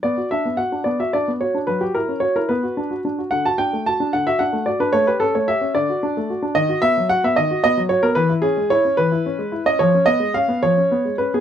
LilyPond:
\new Staff \with { instrumentName = "Grand piano" } { \time 6/8 \key b \minor \tempo 4. = 74 << { d''8 e''8 fis''8 d''16 e''16 d''8 cis''8 | b'16 g'16 ais'8 cis''16 ais'16 b'4. | fis''16 a''16 g''8 a''8 fis''16 e''16 fis''8 d''16 b'16 | cis''16 b'16 a'16 cis''16 e''8 d''4. |
\key cis \dorian dis''8 e''8 fis''16 e''16 dis''8 dis''8 cis''16 ais'16 | b'8 gis'8 cis''8 b'4~ b'16 dis''16 | cis''8 dis''8 eis''8 cis''4 b'16 gis'16 | } \\ { b16 fis'16 d'16 b16 fis'16 d'16 b16 fis'16 d'16 b16 fis'16 d'16 | fis16 fis'16 e'16 cis'16 fis'16 e'16 b16 fis'16 d'16 fis'16 d'16 fis'16 | d16 fis'16 d'16 a16 fis'16 d'16 d16 fis'16 d'16 a16 fis'16 d'16 | a16 g'16 cis'16 a16 g'16 cis'16 d16 fis'16 d'16 a16 fis'16 d'16 |
dis16 fis'16 b16 fis16 fis'16 b16 dis16 fis'16 b16 fis16 fis'16 b16 | e16 e'16 cis'16 gis16 e'16 cis'16 e16 e'16 cis'16 gis16 e'16 cis'16 | eis16 cis'16 b16 gis16 cis'16 b16 eis16 cis'16 b16 gis16 cis'16 b16 | } >> }